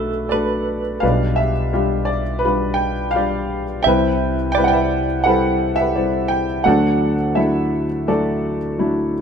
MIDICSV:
0, 0, Header, 1, 4, 480
1, 0, Start_track
1, 0, Key_signature, 1, "major"
1, 0, Tempo, 707547
1, 697, Time_signature, 4, 2, 24, 8
1, 6250, End_track
2, 0, Start_track
2, 0, Title_t, "Clean electric guitar"
2, 0, Program_c, 0, 27
2, 0, Note_on_c, 0, 69, 54
2, 0, Note_on_c, 0, 71, 46
2, 208, Note_off_c, 0, 71, 0
2, 217, Note_on_c, 0, 71, 38
2, 908, Note_off_c, 0, 69, 0
2, 911, Note_off_c, 0, 71, 0
2, 2606, Note_on_c, 0, 76, 63
2, 3085, Note_on_c, 0, 74, 47
2, 4190, Note_off_c, 0, 76, 0
2, 4668, Note_off_c, 0, 74, 0
2, 6250, End_track
3, 0, Start_track
3, 0, Title_t, "Grand piano"
3, 0, Program_c, 1, 0
3, 0, Control_c, 1, 64, 127
3, 0, Note_on_c, 1, 35, 57
3, 0, Note_on_c, 1, 47, 50
3, 0, Note_on_c, 1, 57, 61
3, 0, Note_on_c, 1, 62, 54
3, 0, Note_on_c, 1, 66, 53
3, 0, Note_on_c, 1, 69, 58
3, 0, Note_on_c, 1, 71, 64
3, 0, Note_on_c, 1, 74, 84
3, 0, Note_on_c, 1, 76, 75
3, 198, Note_off_c, 1, 74, 0
3, 198, Note_on_c, 1, 74, 75
3, 211, Note_off_c, 1, 69, 0
3, 218, Note_off_c, 1, 57, 0
3, 218, Note_off_c, 1, 62, 0
3, 218, Note_off_c, 1, 66, 0
3, 218, Note_on_c, 1, 57, 46
3, 218, Note_on_c, 1, 62, 51
3, 218, Note_on_c, 1, 66, 49
3, 219, Note_off_c, 1, 71, 0
3, 219, Note_on_c, 1, 71, 58
3, 221, Note_on_c, 1, 69, 57
3, 232, Note_off_c, 1, 76, 0
3, 547, Note_off_c, 1, 57, 0
3, 547, Note_off_c, 1, 62, 0
3, 548, Note_off_c, 1, 66, 0
3, 548, Note_off_c, 1, 71, 0
3, 669, Note_off_c, 1, 35, 0
3, 669, Note_off_c, 1, 47, 0
3, 672, Note_off_c, 1, 69, 0
3, 680, Note_on_c, 1, 77, 82
3, 692, Note_on_c, 1, 55, 66
3, 693, Note_on_c, 1, 47, 55
3, 694, Note_on_c, 1, 65, 52
3, 696, Note_on_c, 1, 62, 53
3, 697, Note_on_c, 1, 35, 55
3, 698, Note_on_c, 1, 71, 67
3, 702, Note_off_c, 1, 74, 0
3, 705, Control_c, 1, 64, 0
3, 712, Note_on_c, 1, 74, 63
3, 818, Control_c, 1, 64, 127
3, 922, Note_on_c, 1, 76, 86
3, 937, Note_off_c, 1, 77, 0
3, 951, Note_on_c, 1, 67, 61
3, 1025, Note_off_c, 1, 55, 0
3, 1026, Note_off_c, 1, 65, 0
3, 1027, Note_off_c, 1, 62, 0
3, 1028, Note_off_c, 1, 71, 0
3, 1167, Note_off_c, 1, 67, 0
3, 1174, Note_on_c, 1, 55, 64
3, 1175, Note_on_c, 1, 62, 55
3, 1177, Note_on_c, 1, 67, 67
3, 1178, Note_on_c, 1, 65, 55
3, 1382, Note_off_c, 1, 74, 0
3, 1392, Note_on_c, 1, 74, 82
3, 1425, Note_off_c, 1, 76, 0
3, 1506, Note_off_c, 1, 55, 0
3, 1507, Note_off_c, 1, 62, 0
3, 1508, Note_off_c, 1, 65, 0
3, 1508, Note_off_c, 1, 67, 0
3, 1620, Note_on_c, 1, 71, 82
3, 1653, Note_off_c, 1, 71, 0
3, 1653, Note_off_c, 1, 74, 0
3, 1657, Note_on_c, 1, 62, 58
3, 1658, Note_on_c, 1, 65, 51
3, 1659, Note_on_c, 1, 55, 64
3, 1663, Note_on_c, 1, 71, 75
3, 1858, Note_on_c, 1, 79, 91
3, 1988, Note_off_c, 1, 55, 0
3, 1990, Note_off_c, 1, 71, 0
3, 2109, Note_on_c, 1, 77, 86
3, 2126, Note_off_c, 1, 79, 0
3, 2127, Note_off_c, 1, 65, 0
3, 2128, Note_off_c, 1, 62, 0
3, 2137, Note_on_c, 1, 65, 56
3, 2138, Note_on_c, 1, 62, 47
3, 2139, Note_on_c, 1, 67, 66
3, 2141, Note_on_c, 1, 55, 57
3, 2147, Note_on_c, 1, 74, 68
3, 2467, Note_off_c, 1, 62, 0
3, 2467, Note_off_c, 1, 65, 0
3, 2467, Note_off_c, 1, 67, 0
3, 2468, Note_off_c, 1, 55, 0
3, 2588, Note_off_c, 1, 47, 0
3, 2590, Note_off_c, 1, 35, 0
3, 2594, Note_off_c, 1, 74, 0
3, 2595, Note_on_c, 1, 79, 84
3, 2618, Note_off_c, 1, 77, 0
3, 2623, Note_on_c, 1, 55, 61
3, 2625, Control_c, 1, 64, 0
3, 2625, Note_on_c, 1, 36, 59
3, 2626, Note_on_c, 1, 48, 53
3, 2627, Note_on_c, 1, 60, 62
3, 2627, Note_on_c, 1, 64, 56
3, 2628, Note_on_c, 1, 71, 80
3, 2629, Note_on_c, 1, 76, 64
3, 2742, Control_c, 1, 64, 127
3, 2948, Note_off_c, 1, 55, 0
3, 2951, Note_off_c, 1, 60, 0
3, 2951, Note_off_c, 1, 64, 0
3, 2951, Note_off_c, 1, 71, 0
3, 3055, Note_off_c, 1, 79, 0
3, 3065, Note_on_c, 1, 79, 94
3, 3098, Note_on_c, 1, 60, 62
3, 3101, Note_on_c, 1, 55, 62
3, 3103, Note_on_c, 1, 71, 71
3, 3105, Note_on_c, 1, 64, 64
3, 3129, Note_off_c, 1, 79, 0
3, 3148, Note_on_c, 1, 78, 75
3, 3174, Note_on_c, 1, 79, 94
3, 3192, Note_off_c, 1, 78, 0
3, 3197, Note_off_c, 1, 71, 0
3, 3198, Note_off_c, 1, 76, 0
3, 3207, Note_on_c, 1, 71, 67
3, 3209, Note_on_c, 1, 76, 63
3, 3423, Note_off_c, 1, 60, 0
3, 3425, Note_off_c, 1, 55, 0
3, 3427, Note_off_c, 1, 64, 0
3, 3552, Note_on_c, 1, 78, 87
3, 3564, Note_on_c, 1, 60, 59
3, 3566, Note_on_c, 1, 55, 71
3, 3566, Note_on_c, 1, 69, 75
3, 3570, Note_on_c, 1, 64, 62
3, 3573, Note_off_c, 1, 71, 0
3, 3575, Note_off_c, 1, 79, 0
3, 3583, Note_on_c, 1, 71, 67
3, 3895, Note_off_c, 1, 60, 0
3, 3895, Note_off_c, 1, 76, 0
3, 3896, Note_off_c, 1, 55, 0
3, 3896, Note_off_c, 1, 69, 0
3, 3898, Note_off_c, 1, 64, 0
3, 3905, Note_on_c, 1, 76, 91
3, 3930, Note_off_c, 1, 78, 0
3, 3931, Note_off_c, 1, 71, 0
3, 3938, Note_on_c, 1, 67, 59
3, 3941, Note_on_c, 1, 71, 58
3, 4038, Note_on_c, 1, 55, 60
3, 4040, Note_on_c, 1, 74, 61
3, 4041, Note_on_c, 1, 64, 47
3, 4044, Note_on_c, 1, 60, 52
3, 4263, Note_on_c, 1, 79, 85
3, 4286, Note_off_c, 1, 76, 0
3, 4371, Note_off_c, 1, 55, 0
3, 4372, Note_off_c, 1, 64, 0
3, 4372, Note_off_c, 1, 74, 0
3, 4374, Note_off_c, 1, 60, 0
3, 4502, Note_off_c, 1, 36, 0
3, 4502, Note_off_c, 1, 48, 0
3, 4503, Note_off_c, 1, 67, 0
3, 4504, Note_on_c, 1, 78, 85
3, 4505, Note_off_c, 1, 71, 0
3, 4514, Note_on_c, 1, 54, 70
3, 4515, Note_on_c, 1, 38, 53
3, 4515, Note_on_c, 1, 57, 63
3, 4516, Note_on_c, 1, 69, 73
3, 4517, Note_on_c, 1, 50, 61
3, 4519, Note_on_c, 1, 62, 59
3, 4521, Note_off_c, 1, 79, 0
3, 4528, Note_on_c, 1, 74, 63
3, 4532, Control_c, 1, 64, 0
3, 4639, Control_c, 1, 64, 127
3, 4848, Note_off_c, 1, 54, 0
3, 4849, Note_off_c, 1, 57, 0
3, 4849, Note_off_c, 1, 69, 0
3, 4850, Note_off_c, 1, 62, 0
3, 4988, Note_on_c, 1, 76, 82
3, 4995, Note_on_c, 1, 57, 61
3, 4997, Note_on_c, 1, 62, 56
3, 4998, Note_on_c, 1, 54, 64
3, 4998, Note_on_c, 1, 64, 67
3, 5008, Note_off_c, 1, 78, 0
3, 5013, Note_on_c, 1, 69, 63
3, 5330, Note_off_c, 1, 57, 0
3, 5331, Note_off_c, 1, 54, 0
3, 5331, Note_off_c, 1, 62, 0
3, 5331, Note_off_c, 1, 64, 0
3, 5460, Note_off_c, 1, 74, 0
3, 5472, Note_off_c, 1, 69, 0
3, 5477, Note_on_c, 1, 62, 62
3, 5480, Note_on_c, 1, 57, 61
3, 5482, Note_on_c, 1, 54, 62
3, 5482, Note_on_c, 1, 69, 74
3, 5483, Note_on_c, 1, 74, 72
3, 5492, Note_off_c, 1, 76, 0
3, 5499, Note_on_c, 1, 66, 54
3, 5814, Note_off_c, 1, 62, 0
3, 5815, Note_off_c, 1, 57, 0
3, 5817, Note_off_c, 1, 54, 0
3, 5817, Note_off_c, 1, 69, 0
3, 5961, Note_on_c, 1, 54, 56
3, 5966, Note_on_c, 1, 62, 54
3, 5966, Note_on_c, 1, 64, 61
3, 5969, Note_on_c, 1, 57, 51
3, 6185, Note_off_c, 1, 74, 0
3, 6250, Note_off_c, 1, 38, 0
3, 6250, Note_off_c, 1, 50, 0
3, 6250, Note_off_c, 1, 54, 0
3, 6250, Note_off_c, 1, 57, 0
3, 6250, Note_off_c, 1, 62, 0
3, 6250, Note_off_c, 1, 64, 0
3, 6250, Note_off_c, 1, 66, 0
3, 6250, End_track
4, 0, Start_track
4, 0, Title_t, "Fingered electric bass"
4, 0, Program_c, 2, 33
4, 0, Note_on_c, 2, 35, 66
4, 671, Note_off_c, 2, 35, 0
4, 699, Note_on_c, 2, 35, 64
4, 2591, Note_off_c, 2, 35, 0
4, 2617, Note_on_c, 2, 36, 74
4, 4498, Note_off_c, 2, 36, 0
4, 4526, Note_on_c, 2, 38, 82
4, 6250, Note_off_c, 2, 38, 0
4, 6250, End_track
0, 0, End_of_file